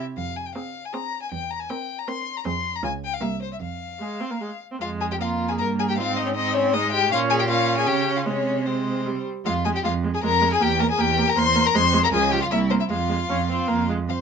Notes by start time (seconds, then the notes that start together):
0.17 F2 F5
0.37 G#5
0.46 G5
0.55 C4 G#4 F5
0.85 G#5
0.93 C4 G#4 A#5
1.22 G#5
1.32 E2 G5
1.50 A#5
1.60 G#5
1.69 C4 A#4 G5
1.98 A#5
2.08 C4 A#4 C6
2.37 A#5
2.45 F2 C4 G#4 C6
2.76 A#5
2.83 C#2 C#4 F4 G#5
3.04 G5
3.14 F5
3.21 C2 A#3 G4 E5
3.42 C5
3.53 E5
3.60 F2 F5
4.00 G#3 G#4
4.21 C4
4.31 A#3
4.41 G#3 G#4
4.72 C4
4.81 F2 G#3 F4 F5
5.00 G#4 G#5
5.11 G4 G5
5.21 A#3 F4 F5
5.49 G#4 G#5
5.58 G2 A#4 A#5
5.79 G#4 G#5
5.89 G4 G5
5.97 G#2 C4 F4 F5
6.16 D#4 D#5
6.26 C#4 C#5
6.35 C4 D#4 D#5
6.53 C#4 C#5
6.74 G#3 D#4 D#5
6.92 G4 G5
7.12 A#2 C#4 F4 F5
7.30 G#4 G#5
7.39 G4 G5
7.48 C#4 F4 F5
7.77 G#4 G#5
7.87 C#3 G4 G5
8.16 F4 F5
8.25 C3 G#3 C#4 C#5
8.66 G#3 C4 C5
9.06 C3 G3
9.45 F2 G#3 F4 F5
9.65 G#3 G#4 G#5
9.74 G4 G5
9.84 F2 G#3 F4 F5
10.04 G#3
10.14 G#4 G#5
10.23 F2 G#3 A#4 A#5
10.41 G#3
10.52 G#4 G#5
10.60 E2 A#3 G4 G5
10.79 A#3 A#4 A#5
10.91 G#4 G#5
10.98 E2 A#3 G4 G5
11.17 A#3
11.28 A#4 A#5
11.36 E2 A#3 C5 C6
11.55 A#3
11.65 A#4 A#5
11.74 F2 G#3 C5 C6
11.93 G#3
12.03 A#4 A#5
12.12 C#2 F3 G#4 G#5
12.31 F3 G4 G5
12.40 F4 F5
12.51 C2 A#3 E4 E5
12.70 A#3 C4 C5
12.80 E4 E5
12.90 F2 G#3 F4 F5
13.09 G#3
13.29 F2 C#4
13.50 C4
13.68 F2 A#3
13.89 G#3
14.09 F2 C5 F5